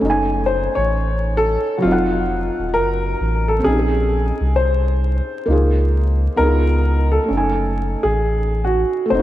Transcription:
0.00 0.68 F#1 loud
0.00 1.77 A3 medium
0.00 1.79 C#4 medium
0.05 1.82 D#4 medium
0.10 1.84 G#5 medium
0.46 0.73 C5 medium
0.75 1.57 A1 medium
0.75 1.33 C#5 loud
1.37 1.75 A4 loud
1.78 3.59 F#3 medium
1.78 1.83 F#4 medium
1.82 2.50 F1 medium
1.82 3.58 C4 medium
1.82 2.70 F4 loud
1.87 3.63 D#4 medium
1.92 3.66 F#5 medium
2.58 2.76 D#1 medium
2.74 3.15 F#1 loud
2.74 3.51 A#4 loud
3.20 3.60 A1 loud
3.48 3.64 A4 medium
3.59 5.40 C4 medium
3.64 4.32 A#1 medium
3.64 5.42 C#4 medium
3.64 4.52 G#4 loud
3.68 5.45 D#4 medium
3.73 3.77 G4 medium
3.79 5.50 G#4 medium
4.40 5.21 C2 medium
4.56 6.43 C5 loud
5.46 6.28 C#2 medium
5.46 6.37 A#3 medium
5.46 6.37 D#4 medium
5.50 6.39 F4 medium
5.50 6.40 G#4 medium
6.36 7.19 C#2 loud
6.36 7.28 B3 medium
6.36 7.29 D#4 medium
6.36 7.08 A#4 loud
6.40 6.47 E4 soft
6.40 7.31 G#4 medium
6.47 7.33 F4 medium
7.12 7.99 A4 medium
7.24 9.04 A3 medium
7.28 7.95 F#1 loud
7.28 9.07 C#4 medium
7.33 9.09 D#4 medium
7.37 9.11 G#5 medium
8.03 8.84 A1 medium
8.03 8.67 G#4 medium
8.64 9.07 F#4 medium
9.06 9.22 A3 medium
9.10 9.22 F1 loud
9.10 9.22 C4 medium
9.10 9.22 C5 loud
9.15 9.22 D#4 medium
9.19 9.22 F#4 medium

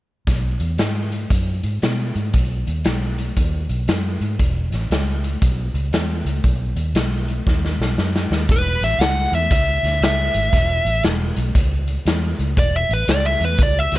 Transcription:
0.27 0.56 B1 medium
0.27 kick medium
0.27 snare soft
0.27 closed hi-hat medium
0.60 0.76 E2 medium
0.60 closed hi-hat medium
0.78 1.24 G#2 medium
0.78 snare medium
0.78 closed hi-hat medium
1.12 closed hi-hat soft
1.30 1.60 F#2 medium
1.30 kick medium
1.30 closed hi-hat medium
1.63 1.80 G#2 medium
1.63 closed hi-hat medium
1.82 2.11 B2 medium
1.82 snare loud
1.82 closed hi-hat medium
2.15 2.32 G#2 medium
2.15 closed hi-hat medium
2.34 2.63 B1 medium
2.34 kick medium
2.34 closed hi-hat medium
2.67 2.83 D#2 medium
2.67 closed hi-hat soft
2.85 3.30 B1 medium
2.85 snare medium
2.85 closed hi-hat medium
3.18 closed hi-hat soft
3.37 3.65 D#2 medium
3.37 kick medium
3.37 closed hi-hat medium
3.69 3.85 B1 medium
3.69 closed hi-hat soft
3.88 4.17 F#2 medium
3.88 snare loud
3.88 closed hi-hat medium
4.21 4.37 G#2 medium
4.21 closed hi-hat soft
4.39 4.68 E1 medium
4.39 kick medium
4.39 closed hi-hat medium
4.72 4.88 A1 medium
4.72 snare soft
4.72 closed hi-hat medium
4.90 5.35 C#2 medium
4.90 snare medium
4.90 closed hi-hat medium
5.24 closed hi-hat medium
5.42 5.71 B1 medium
5.42 kick loud
5.42 closed hi-hat medium
5.74 5.90 C#2 medium
5.74 closed hi-hat medium
5.93 6.21 E2 medium
5.93 snare loud
5.93 closed hi-hat medium
6.25 6.41 C#2 medium
6.25 closed hi-hat medium
6.44 6.73 B1 medium
6.44 kick medium
6.44 closed hi-hat medium
6.76 6.92 D#2 medium
6.76 closed hi-hat medium
6.94 7.40 B1 medium
6.94 snare loud
6.94 closed hi-hat medium
7.28 closed hi-hat medium
7.47 7.75 D#2 medium
7.47 kick loud
7.47 snare medium
7.65 snare soft
7.79 7.95 B1 medium
7.79 snare medium
7.98 8.26 F#2 medium
7.98 snare medium
8.16 snare medium
8.31 8.47 D#2 medium
8.31 snare medium
8.49 8.75 E1 medium
8.49 8.82 B4 medium
8.49 kick loud
8.49 snare soft
8.49 closed hi-hat medium
8.81 8.96 A1 medium
8.81 9.01 E5 medium
8.81 snare soft
8.81 closed hi-hat medium
8.98 9.26 C#2 medium
8.98 9.32 F#5 medium
8.98 snare loud
8.98 closed hi-hat medium
9.32 9.47 E2 medium
9.32 9.51 E5 medium
9.32 closed hi-hat medium
9.51 9.77 C#2 medium
9.51 10.01 E5 medium
9.51 kick loud
9.51 snare soft
9.51 closed hi-hat medium
9.83 9.98 D2 medium
9.83 snare soft
9.83 closed hi-hat medium
10.01 10.28 C#2 medium
10.01 11.02 E5 medium
10.01 snare loud
10.01 closed hi-hat medium
10.34 10.50 G#1 medium
10.34 closed hi-hat medium
10.53 10.80 E1 medium
10.53 kick medium
10.53 snare soft
10.53 closed hi-hat medium
10.85 11.00 A1 medium
10.85 closed hi-hat medium
11.03 11.30 E1 medium
11.03 snare loud
11.03 closed hi-hat medium
11.36 11.52 B1 medium
11.36 closed hi-hat medium
11.55 11.97 C#2 medium
11.55 kick loud
11.55 closed hi-hat medium
11.88 closed hi-hat medium
12.05 12.32 E2 medium
12.05 snare loud
12.05 closed hi-hat medium
12.39 12.54 C#2 medium
12.39 closed hi-hat medium
12.57 12.83 E1 medium
12.57 12.75 D5 medium
12.57 kick loud
12.57 closed hi-hat medium
12.77 12.92 E5 medium
12.89 13.05 A1 medium
12.89 closed hi-hat medium
12.93 13.09 B4 medium
13.08 13.34 C#2 medium
13.08 13.26 D5 loud
13.08 snare loud
13.08 closed hi-hat medium
13.27 13.43 E5 medium
13.40 13.55 E2 medium
13.40 closed hi-hat medium
13.45 13.60 B4 medium
13.58 13.86 C#2 medium
13.58 kick loud
13.58 closed hi-hat medium
13.63 13.79 D5 loud
13.79 13.94 E5 medium
13.91 13.99 D2 medium
13.91 snare soft
13.91 closed hi-hat medium

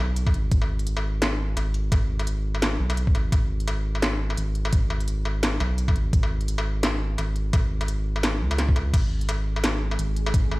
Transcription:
0.00 0.33 B1 loud
0.16 closed hi-hat medium
0.27 kick loud
0.27 struck metal medium
0.34 0.50 G#1 medium
0.34 closed hi-hat soft
0.52 1.56 G#1 loud
0.52 kick loud
0.52 closed hi-hat medium
0.62 struck metal soft
0.79 closed hi-hat soft
0.87 closed hi-hat medium
0.97 struck metal medium
1.22 snare loud
1.22 closed hi-hat medium
1.22 struck metal soft
1.57 1.91 G#1 loud
1.57 closed hi-hat medium
1.57 struck metal medium
1.74 closed hi-hat soft
1.92 2.79 G#1 loud
1.92 kick loud
1.92 closed hi-hat medium
1.92 struck metal medium
2.19 closed hi-hat soft
2.19 struck metal soft
2.27 closed hi-hat medium
2.55 struck metal soft
2.62 snare loud
2.62 closed hi-hat medium
2.80 3.14 B1 loud
2.90 closed hi-hat soft
2.90 struck metal medium
2.97 closed hi-hat medium
3.07 kick loud
3.15 3.31 G#1 medium
3.15 closed hi-hat soft
3.15 struck metal soft
3.32 4.37 G#1 loud
3.32 kick loud
3.32 closed hi-hat medium
3.32 struck metal medium
3.60 closed hi-hat soft
3.68 closed hi-hat medium
3.68 struck metal medium
3.95 struck metal soft
4.02 snare loud
4.02 closed hi-hat medium
4.30 struck metal medium
4.37 4.72 G#1 loud
4.37 closed hi-hat medium
4.55 closed hi-hat soft
4.65 struck metal medium
4.73 5.59 G#1 loud
4.73 kick loud
4.73 closed hi-hat medium
4.90 struck metal medium
5.00 closed hi-hat soft
5.08 closed hi-hat medium
5.25 struck metal medium
5.43 snare loud
5.43 closed hi-hat medium
5.60 5.95 B1 loud
5.60 struck metal medium
5.78 closed hi-hat medium
5.88 kick loud
5.88 struck metal medium
5.95 6.12 G#1 medium
5.95 closed hi-hat soft
6.13 7.17 G#1 loud
6.13 kick loud
6.13 closed hi-hat medium
6.23 struck metal medium
6.41 closed hi-hat soft
6.48 closed hi-hat medium
6.58 struck metal medium
6.83 snare loud
6.83 closed hi-hat medium
6.83 struck metal medium
7.18 7.53 G#1 loud
7.18 closed hi-hat medium
7.18 struck metal medium
7.36 closed hi-hat soft
7.53 8.43 G#1 loud
7.53 kick loud
7.53 closed hi-hat medium
7.53 struck metal medium
7.81 closed hi-hat soft
7.81 struck metal medium
7.88 closed hi-hat medium
8.16 struck metal medium
8.23 snare loud
8.23 closed hi-hat medium
8.41 8.93 C#2 medium
8.51 closed hi-hat soft
8.51 struck metal medium
8.58 snare medium
8.58 closed hi-hat medium
8.69 kick loud
8.76 closed hi-hat soft
8.76 struck metal medium
8.94 9.98 G#1 loud
8.94 10.60 G#3 medium
8.94 10.60 D#4 medium
8.94 10.60 G#4 medium
8.94 10.60 G#5 medium
8.94 kick loud
8.94 closed hi-hat medium
8.94 crash medium
8.94 struck metal medium
9.21 closed hi-hat soft
9.29 closed hi-hat medium
9.29 struck metal medium
9.56 struck metal medium
9.64 snare loud
9.64 closed hi-hat medium
9.91 struck metal medium
9.99 10.33 G#1 loud
9.99 closed hi-hat medium
10.16 closed hi-hat soft
10.26 struck metal medium
10.34 10.60 G#1 loud
10.34 kick loud
10.34 closed hi-hat medium
10.52 struck metal medium

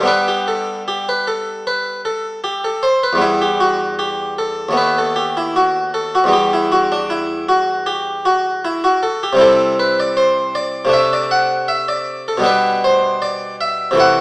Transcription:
0.00 3.13 G2 soft
0.00 3.14 G3 soft
0.00 3.16 B3 soft
0.05 3.17 D4 soft
0.05 0.27 B4 medium
0.28 0.48 G4 medium
0.48 0.81 A4 medium
0.88 1.07 G4 medium
1.09 1.28 B4 medium
1.27 1.67 A4 medium
1.67 2.00 B4 medium
2.05 2.38 A4 medium
2.44 2.63 G4 medium
2.64 2.83 A4 medium
2.83 3.02 C5 medium
3.03 3.22 B4 medium
3.13 4.69 E2 soft
3.13 4.70 G3 soft
3.17 4.71 B3 soft
3.21 3.41 E4 medium
3.42 3.61 G4 medium
3.60 3.94 F#4 medium
3.99 4.33 G4 medium
4.38 4.72 A4 medium
4.69 6.24 D#2 medium
4.69 6.25 A3 soft
4.69 6.26 B3 soft
4.77 4.97 B4 medium
4.98 5.17 A4 medium
5.16 5.36 G4 medium
5.37 5.56 E4 medium
5.56 5.89 F#4 medium
5.94 6.13 A4 medium
6.15 6.34 F#4 medium
6.24 9.32 E2 medium
6.24 9.33 G3 soft
6.28 9.34 B3 soft
6.33 6.52 G4 medium
6.53 6.72 E4 medium
6.72 6.91 F#4 medium
6.92 7.10 D4 medium
7.10 7.43 E4 medium
7.49 7.87 F#4 medium
7.86 8.25 G4 medium
8.25 8.63 F#4 medium
8.65 8.83 E4 medium
8.84 9.03 F#4 medium
9.03 9.22 A4 medium
9.23 9.41 G4 medium
9.33 10.84 C3 medium
9.33 10.86 G3 soft
9.33 10.87 C4 soft
9.39 10.88 E4 soft
9.39 9.73 A4 medium
9.79 9.98 B4 medium
10.00 10.18 D5 medium
10.17 10.55 C5 medium
10.55 10.93 D5 medium
10.85 12.37 C3 medium
10.85 12.38 A3 soft
10.85 12.39 D4 soft
10.93 11.12 E5 medium
11.13 11.31 D5 medium
11.31 11.69 F#5 medium
11.68 11.88 E5 medium
11.88 12.26 D5 medium
12.28 12.46 A4 medium
12.37 13.91 B2 medium
12.37 13.92 G3 soft
12.42 13.93 B3 soft
12.42 13.94 D4 soft
12.46 12.84 B4 medium
12.84 13.22 C5 medium
13.22 13.55 D5 medium
13.61 13.99 E5 medium
13.91 14.21 C3 medium
13.91 14.21 E3 soft
13.95 14.21 A3 soft
13.95 14.21 E4 soft
14.00 14.19 F#5 medium

